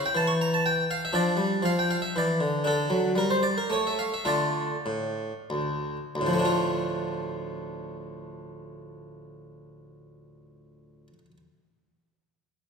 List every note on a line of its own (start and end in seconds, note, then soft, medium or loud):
0.00 1.08 E4 medium
0.06 0.16 G5 medium
0.15 0.85 E3 medium
0.15 0.28 A5 loud
0.27 0.39 C#6 medium
0.41 0.53 A#5 medium
0.54 0.65 A5 medium
0.66 0.89 G5 loud
0.91 1.02 F5 loud
1.05 1.15 E5 loud
1.13 1.36 F3 medium
1.13 2.59 D4 soft
1.13 1.63 D5 loud
1.37 1.61 G3 medium
1.63 1.99 F3 medium
1.63 1.76 F5 loud
1.79 1.89 G5 medium
1.91 2.02 F5 medium
2.02 2.14 E5 medium
2.16 2.38 E3 medium
2.16 2.37 D5 medium
2.40 2.63 D3 medium
2.64 2.88 D3 medium
2.64 3.12 D4 soft
2.64 3.09 A4 loud
2.90 3.14 F#3 medium
3.16 3.54 G3 medium
3.16 3.29 A#4 medium
3.31 3.43 C5 medium
3.43 3.56 D5 medium
3.58 3.70 A#4 medium
3.70 4.11 A3 medium
3.70 3.85 C#5 medium
3.87 3.99 E5 medium
3.99 4.13 F5 medium
4.14 4.28 E5 medium
4.25 4.68 D3 medium
4.25 4.74 A3 soft
4.25 4.75 F4 soft
4.25 5.61 D5 medium
4.86 5.31 A2 soft
5.50 5.97 D2 medium
6.15 11.07 D2 medium
6.21 11.13 A2 medium
6.26 11.18 F3 medium
6.33 11.25 A3 medium
6.39 11.31 D4 medium
6.45 11.37 F4 medium